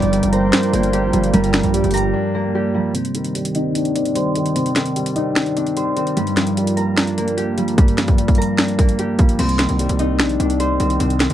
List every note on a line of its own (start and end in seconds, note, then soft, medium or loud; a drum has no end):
0.00 0.22 G1 loud
0.00 0.73 G2 loud
0.00 0.93 F3 medium
0.00 1.12 G3 loud
0.00 2.52 C4 medium
0.00 1.92 D4 medium
0.00 1.42 D#4 loud
0.00 2.92 F4 medium
0.00 2.92 A#4 medium
0.00 1.30 C5 medium
0.00 0.29 D5 loud
0.00 2.92 D5 medium
0.00 2.92 G5 medium
0.00 closed hi-hat medium
0.13 0.92 G3 medium
0.13 closed hi-hat medium
0.23 0.52 G1 loud
0.23 closed hi-hat medium
0.32 0.72 A#3 medium
0.32 1.30 C5 loud
0.32 1.72 A#5 medium
0.32 closed hi-hat medium
0.53 1.53 D4 loud
0.53 finger snap medium
0.53 snare loud
0.53 closed hi-hat medium
0.63 closed hi-hat medium
0.73 1.05 G1 loud
0.73 1.74 A#3 medium
0.73 2.34 A#3 medium
0.73 closed hi-hat medium
0.83 closed hi-hat medium
0.93 1.72 G3 medium
0.93 2.54 G4 medium
0.93 closed hi-hat medium
1.03 1.13 G#1 loud
1.13 1.33 G1 loud
1.13 1.52 F3 medium
1.13 1.32 G3 medium
1.13 closed hi-hat medium
1.24 closed hi-hat medium
1.33 1.63 G1 loud
1.33 2.34 G2 loud
1.33 2.73 G3 loud
1.33 1.71 A#4 loud
1.33 closed hi-hat medium
1.44 closed hi-hat medium
1.54 2.55 F3 medium
1.54 finger snap medium
1.54 snare loud
1.54 closed hi-hat medium
1.63 1.83 A#1 loud
1.63 closed hi-hat medium
1.74 2.53 G3 medium
1.74 2.12 G4 loud
1.74 closed hi-hat medium
1.84 2.14 G1 loud
1.84 closed hi-hat soft
1.91 2.34 A#3 medium
1.91 3.34 A#5 medium
1.91 closed hi-hat medium
1.91 open hi-hat medium
1.97 closed hi-hat medium
2.14 2.94 D4 loud
2.35 5.56 A#3 medium
2.35 2.95 A#3 medium
2.55 2.95 G3 medium
2.55 4.90 G4 medium
2.74 2.95 F3 medium
2.74 3.00 G3 medium
2.95 3.95 C3 medium
2.95 6.14 D#3 medium
2.95 4.36 C4 loud
2.95 6.14 C5 medium
2.95 9.35 D5 medium
2.95 9.35 G5 medium
2.95 closed hi-hat medium
3.05 closed hi-hat soft
3.15 4.16 D#3 medium
3.15 closed hi-hat medium
3.25 closed hi-hat medium
3.35 4.14 G3 medium
3.35 closed hi-hat medium
3.45 closed hi-hat medium
3.55 3.94 C4 medium
3.55 5.15 D#4 loud
3.55 closed hi-hat medium
3.75 4.76 D4 loud
3.75 closed hi-hat medium
3.85 closed hi-hat soft
3.95 4.96 C4 medium
3.95 5.22 D4 medium
3.95 closed hi-hat medium
4.05 closed hi-hat medium
4.15 4.95 G3 medium
4.15 5.76 C5 medium
4.15 closed hi-hat medium
4.35 4.75 D#3 medium
4.35 4.55 C4 medium
4.35 closed hi-hat medium
4.46 closed hi-hat medium
4.55 5.56 C3 medium
4.55 5.96 C4 medium
4.55 closed hi-hat medium
4.66 closed hi-hat medium
4.76 5.77 D#3 medium
4.76 finger snap medium
4.76 snare medium
4.76 closed hi-hat medium
4.86 closed hi-hat medium
4.96 5.75 G3 medium
4.96 closed hi-hat medium
5.06 closed hi-hat medium
5.16 5.55 C4 medium
5.16 7.86 D#4 medium
5.16 closed hi-hat medium
5.36 6.17 D4 medium
5.36 finger snap medium
5.36 snare loud
5.36 closed hi-hat medium
5.46 closed hi-hat soft
5.56 6.17 C4 medium
5.56 8.36 D4 medium
5.56 closed hi-hat medium
5.67 closed hi-hat medium
5.77 6.17 G3 medium
5.77 7.75 C5 medium
5.77 closed hi-hat medium
5.97 6.17 D#3 medium
5.97 8.97 C4 medium
5.97 closed hi-hat medium
6.07 closed hi-hat medium
6.17 7.17 G2 medium
6.17 7.56 G3 medium
6.17 9.36 F4 medium
6.17 9.36 A#4 medium
6.17 closed hi-hat medium
6.27 closed hi-hat medium
6.37 7.38 F3 medium
6.37 finger snap medium
6.37 snare medium
6.37 closed hi-hat medium
6.47 closed hi-hat medium
6.57 7.37 G3 medium
6.57 closed hi-hat medium
6.67 closed hi-hat medium
6.77 7.16 A#3 medium
6.77 8.17 A#5 medium
6.77 closed hi-hat medium
6.97 7.98 D4 loud
6.97 finger snap medium
6.97 snare loud
6.97 closed hi-hat medium
7.07 closed hi-hat soft
7.18 8.18 A#3 medium
7.18 8.78 A#3 medium
7.18 closed hi-hat medium
7.28 closed hi-hat medium
7.37 8.17 G3 medium
7.37 8.99 G4 medium
7.37 closed hi-hat medium
7.58 7.97 F3 medium
7.58 7.77 G3 medium
7.58 closed hi-hat medium
7.68 closed hi-hat medium
7.78 8.78 G2 medium
7.78 9.17 G3 medium
7.78 kick loud
7.78 closed hi-hat medium
7.88 closed hi-hat soft
7.98 8.99 F3 medium
7.98 finger snap medium
7.98 snare medium
7.98 closed hi-hat medium
8.08 kick medium
8.08 closed hi-hat medium
8.18 8.97 G3 medium
8.18 closed hi-hat medium
8.28 kick medium
8.28 closed hi-hat soft
8.35 8.78 A#3 medium
8.35 9.78 A#5 medium
8.35 closed hi-hat medium
8.42 closed hi-hat medium
8.58 9.39 D4 medium
8.58 finger snap medium
8.58 snare loud
8.58 closed hi-hat medium
8.68 closed hi-hat soft
8.79 11.34 A#3 medium
8.79 9.39 A#3 medium
8.79 kick medium
8.79 closed hi-hat medium
8.89 closed hi-hat medium
8.99 9.39 G3 medium
8.99 11.34 G4 medium
8.99 closed hi-hat medium
9.18 9.39 F3 medium
9.18 9.44 G3 medium
9.18 kick loud
9.18 closed hi-hat medium
9.29 closed hi-hat medium
9.39 9.68 C2 loud
9.39 10.40 C3 medium
9.39 10.80 C4 loud
9.39 closed hi-hat medium
9.39 crash loud
9.49 closed hi-hat medium
9.59 10.60 D#3 medium
9.59 finger snap medium
9.59 snare medium
9.59 closed hi-hat medium
9.69 9.89 C2 loud
9.69 closed hi-hat medium
9.79 10.58 G3 medium
9.79 closed hi-hat medium
9.89 10.21 C2 loud
9.89 closed hi-hat medium
9.99 10.38 C4 medium
9.99 11.34 D#4 medium
9.99 closed hi-hat medium
10.19 10.39 A#1 loud
10.19 11.20 D4 loud
10.19 finger snap medium
10.19 snare loud
10.19 closed hi-hat medium
10.29 closed hi-hat soft
10.39 10.78 C2 loud
10.39 11.34 C4 medium
10.39 11.34 D4 medium
10.39 closed hi-hat medium
10.50 closed hi-hat medium
10.59 11.34 G3 medium
10.59 11.34 C5 medium
10.59 closed hi-hat medium
10.80 10.99 C2 loud
10.80 11.19 D#3 medium
10.80 10.99 C4 medium
10.80 closed hi-hat medium
10.90 closed hi-hat medium
10.99 11.29 C2 loud
10.99 11.34 C3 loud
10.99 11.34 C4 medium
10.99 closed hi-hat medium
11.10 closed hi-hat medium
11.20 11.34 D#3 medium
11.20 finger snap medium
11.20 snare medium
11.20 closed hi-hat medium
11.30 11.34 C2 loud
11.30 closed hi-hat medium